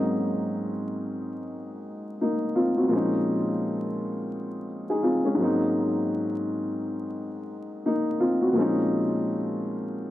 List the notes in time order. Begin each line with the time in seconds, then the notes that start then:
Already playing: G#2 F#3 A#3 C4 D#4
2.21 A#3 D#4
2.55 C4 F4
2.77 C4 F#4
2.88 A#2 F3 G#3
2.93 C4 C#4 D#4
4.90 D#4 G#4
5.03 C4 F4
5.25 G#3 C#4
5.35 G#2 F#3 A#3
5.41 C4 D#4
7.86 A#3 D#4
8.20 C4 F4
8.41 C4 F#4
8.53 A#2 F3 G#3
8.57 C4 C#4 D#4